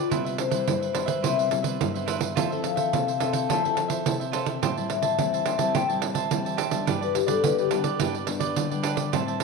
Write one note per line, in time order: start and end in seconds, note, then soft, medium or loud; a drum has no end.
0.10 0.65 C3 medium
0.10 0.49 G3 medium
0.10 0.50 B3 medium
0.10 0.24 E4 medium
0.10 0.50 E4 medium
0.10 0.24 B4 medium
0.10 0.24 C5 medium
0.10 0.24 E5 medium
0.10 pandeiro medium
0.25 0.37 B4 soft
0.25 0.36 C5 soft
0.25 0.37 E5 soft
0.25 pandeiro soft
0.37 1.20 C5 medium
0.37 muted cavaquinho stroke soft
0.37 pandeiro medium
0.50 0.91 G3 medium
0.50 0.91 E4 medium
0.50 0.80 B4 medium
0.50 0.80 C5 medium
0.50 0.79 E5 medium
0.50 pandeiro medium
0.68 1.22 G2 medium
0.68 pandeiro medium
0.81 0.94 B4 soft
0.81 0.93 C5 soft
0.81 0.94 E5 soft
0.81 pandeiro soft
0.93 1.12 G3 medium
0.93 1.12 B3 medium
0.93 1.08 E4 soft
0.93 1.13 E4 medium
0.93 1.06 B4 soft
0.93 1.07 C5 soft
0.93 1.05 E5 medium
0.93 pandeiro medium
1.06 1.22 B4 medium
1.06 1.22 C5 medium
1.06 1.21 E5 medium
1.06 pandeiro medium
1.22 1.78 C3 medium
1.22 1.48 G3 medium
1.22 1.48 B3 medium
1.22 1.36 E4 medium
1.22 1.49 E4 medium
1.22 1.37 B4 medium
1.22 1.37 C5 medium
1.22 1.52 E5 medium
1.22 1.36 E5 medium
1.22 pandeiro medium
1.38 1.49 B4 soft
1.38 1.49 C5 soft
1.38 1.50 E5 soft
1.38 pandeiro soft
1.50 1.90 G3 medium
1.50 1.90 B3 medium
1.50 1.90 E4 medium
1.50 muted cavaquinho stroke soft
1.50 pandeiro medium
1.63 1.92 B4 medium
1.63 1.93 C5 medium
1.63 1.92 E5 medium
1.63 pandeiro medium
1.81 2.34 G2 medium
1.81 pandeiro medium
1.94 2.33 G3 medium
1.94 2.33 B3 medium
1.94 2.33 E4 medium
1.94 2.07 B4 soft
1.94 2.06 C5 soft
1.94 2.07 E5 soft
1.94 pandeiro soft
2.06 2.20 E4 medium
2.06 2.19 B4 medium
2.06 2.21 C5 medium
2.06 2.18 E5 medium
2.06 pandeiro medium
2.19 2.35 B4 soft
2.19 2.35 C5 soft
2.19 2.34 E5 soft
2.19 pandeiro medium
2.35 2.91 F3 medium
2.35 2.46 C4 medium
2.35 2.46 E4 medium
2.35 2.49 F4 medium
2.35 2.50 A4 medium
2.35 2.46 A4 medium
2.35 2.50 C5 medium
2.35 2.50 E5 medium
2.35 pandeiro medium
2.51 2.89 C4 medium
2.51 2.89 E4 medium
2.51 2.90 A4 medium
2.51 2.62 A4 soft
2.51 2.63 C5 soft
2.51 2.63 E5 soft
2.51 pandeiro soft
2.63 3.45 F5 medium
2.63 muted cavaquinho stroke soft
2.63 pandeiro medium
2.76 3.06 A4 medium
2.76 3.05 C5 medium
2.76 3.04 E5 medium
2.76 pandeiro medium
2.93 3.47 C3 medium
2.93 3.10 C4 medium
2.93 3.10 E4 soft
2.93 3.10 A4 medium
2.93 pandeiro medium
3.07 3.19 A4 soft
3.07 3.20 C5 soft
3.07 3.20 E5 soft
3.07 pandeiro soft
3.20 3.59 C4 soft
3.20 3.59 E4 medium
3.20 3.33 F4 soft
3.20 3.34 A4 soft
3.20 3.59 A4 medium
3.20 3.33 C5 medium
3.20 3.31 E5 medium
3.20 pandeiro medium
3.33 3.48 A4 medium
3.33 3.48 C5 medium
3.33 3.47 E5 medium
3.33 pandeiro medium
3.49 4.03 F3 medium
3.49 3.62 F4 medium
3.49 3.63 A4 medium
3.49 3.63 C5 medium
3.49 3.63 E5 medium
3.49 3.77 A5 medium
3.49 pandeiro medium
3.64 4.02 C4 medium
3.64 4.02 E4 medium
3.64 4.03 A4 medium
3.64 3.75 A4 soft
3.64 3.76 C5 soft
3.64 3.76 E5 soft
3.64 pandeiro soft
3.76 muted cavaquinho stroke soft
3.76 pandeiro medium
3.88 4.18 A4 medium
3.88 4.18 C5 medium
3.88 4.17 E5 medium
3.88 pandeiro medium
4.06 4.60 C3 medium
4.06 4.23 C4 medium
4.06 4.23 E4 medium
4.06 4.23 A4 medium
4.06 pandeiro medium
4.20 4.32 A4 soft
4.20 4.32 C5 soft
4.20 4.33 E5 medium
4.20 pandeiro soft
4.32 4.60 C4 medium
4.32 4.60 E4 medium
4.32 4.46 F4 medium
4.32 4.46 A4 medium
4.32 4.60 A4 medium
4.32 4.45 C5 medium
4.32 4.44 E5 medium
4.32 pandeiro medium
4.45 4.61 A4 soft
4.45 4.60 C5 soft
4.45 4.60 E5 soft
4.45 pandeiro medium
4.62 5.16 A2 medium
4.62 4.71 G3 medium
4.62 4.71 C4 medium
4.62 4.71 E4 medium
4.62 4.75 G4 medium
4.62 4.75 C5 medium
4.62 4.76 E5 medium
4.62 4.75 A5 medium
4.62 pandeiro medium
4.76 5.14 G3 medium
4.76 5.15 C4 medium
4.76 5.15 E4 medium
4.76 4.88 C5 soft
4.76 4.89 E5 soft
4.76 4.89 A5 soft
4.76 pandeiro soft
4.89 5.71 E5 medium
4.89 muted cavaquinho stroke soft
4.89 pandeiro medium
5.02 5.31 C5 medium
5.02 5.31 E5 medium
5.02 5.30 A5 medium
5.02 pandeiro medium
5.19 5.72 E3 medium
5.19 5.56 G3 medium
5.19 5.57 C4 soft
5.19 5.57 E4 medium
5.19 pandeiro medium
5.33 5.45 C5 soft
5.33 5.46 E5 soft
5.33 5.46 A5 soft
5.33 pandeiro soft
5.45 5.59 G4 soft
5.45 5.59 C5 medium
5.45 5.58 E5 medium
5.45 5.57 A5 soft
5.45 pandeiro medium
5.58 5.83 G3 medium
5.58 5.84 C4 medium
5.58 5.84 E4 medium
5.58 5.73 C5 medium
5.58 5.73 E5 medium
5.58 5.72 A5 medium
5.58 pandeiro medium
5.74 6.29 A2 medium
5.74 5.88 G4 medium
5.74 5.88 C5 medium
5.74 5.88 E5 medium
5.74 5.92 G5 medium
5.74 5.87 A5 medium
5.74 pandeiro medium
5.89 6.27 G3 medium
5.89 6.27 C4 medium
5.89 6.27 E4 medium
5.89 6.01 C5 soft
5.89 6.02 E5 soft
5.89 6.02 A5 soft
5.89 pandeiro soft
6.02 muted cavaquinho stroke soft
6.02 pandeiro medium
6.14 6.44 C5 medium
6.14 6.43 E5 medium
6.14 6.43 A5 medium
6.14 pandeiro medium
6.31 6.85 E3 medium
6.31 6.57 G3 medium
6.31 6.58 C4 medium
6.31 6.58 E4 medium
6.31 pandeiro medium
6.45 6.57 C5 soft
6.45 6.58 E5 soft
6.45 6.58 A5 soft
6.45 pandeiro soft
6.57 6.71 G4 medium
6.57 6.72 C5 medium
6.57 6.71 E5 medium
6.57 6.69 A5 medium
6.57 pandeiro medium
6.70 6.96 G3 medium
6.70 6.96 B3 medium
6.70 6.96 D4 medium
6.70 6.86 C5 soft
6.70 6.86 E5 soft
6.70 6.85 A5 soft
6.70 pandeiro medium
6.86 7.41 G2 medium
6.86 7.00 D4 medium
6.86 7.00 G4 medium
6.86 7.01 B4 medium
6.86 7.00 D5 medium
6.86 pandeiro medium
7.01 7.13 G4 soft
7.01 7.13 B4 soft
7.01 7.16 B4 medium
7.01 7.14 D5 medium
7.01 pandeiro soft
7.14 7.29 G4 medium
7.14 muted cavaquinho stroke soft
7.14 pandeiro medium
7.26 7.66 G3 medium
7.26 7.67 B3 medium
7.26 7.67 D4 medium
7.26 7.57 G4 medium
7.26 7.43 A4 medium
7.26 7.56 B4 medium
7.26 7.55 D5 medium
7.26 pandeiro medium
7.44 7.97 D3 medium
7.44 7.58 B4 medium
7.44 pandeiro medium
7.58 7.67 G4 medium
7.58 7.70 G4 soft
7.58 7.71 B4 soft
7.58 7.71 D5 soft
7.58 pandeiro soft
7.71 7.88 G3 medium
7.71 7.88 B3 medium
7.71 7.85 D4 soft
7.71 7.89 D4 medium
7.71 7.85 G4 soft
7.71 7.84 B4 soft
7.71 7.83 D5 soft
7.71 pandeiro medium
7.84 7.99 G4 medium
7.84 7.99 B4 medium
7.84 7.98 D5 medium
7.84 pandeiro medium
8.00 8.54 G2 medium
8.00 8.24 G3 medium
8.00 8.24 B3 medium
8.00 8.13 D4 medium
8.00 8.25 D4 medium
8.00 8.14 G4 medium
8.00 8.14 B4 medium
8.00 8.14 D5 medium
8.00 pandeiro medium
8.15 8.27 G4 soft
8.15 8.27 B4 soft
8.15 8.27 D5 soft
8.15 pandeiro soft
8.27 8.66 G3 medium
8.27 8.66 B3 medium
8.27 8.66 D4 medium
8.27 muted cavaquinho stroke soft
8.27 pandeiro medium
8.40 8.70 G4 medium
8.40 8.69 B4 medium
8.40 8.68 D5 medium
8.40 pandeiro medium
8.56 9.10 D3 medium
8.56 pandeiro medium
8.71 9.09 G3 medium
8.71 9.09 B3 medium
8.71 9.09 D4 medium
8.71 8.83 G4 soft
8.71 8.83 B4 soft
8.71 8.84 D5 soft
8.71 pandeiro soft
8.83 8.97 D4 medium
8.83 8.97 G4 medium
8.83 8.96 B4 medium
8.83 8.94 D5 medium
8.83 pandeiro medium
8.96 9.11 G4 soft
8.96 9.11 B4 soft
8.96 9.10 D5 soft
8.96 pandeiro medium
9.12 9.44 A2 medium
9.12 9.40 G3 medium
9.12 9.40 C4 medium
9.12 9.40 E4 medium
9.12 9.26 G4 medium
9.12 9.26 C5 medium
9.12 9.27 E5 medium
9.12 9.25 A5 medium
9.12 pandeiro medium
9.27 9.39 C5 soft
9.27 9.39 E5 soft
9.27 9.39 A5 medium
9.27 pandeiro soft
9.39 muted cavaquinho stroke soft
9.39 pandeiro medium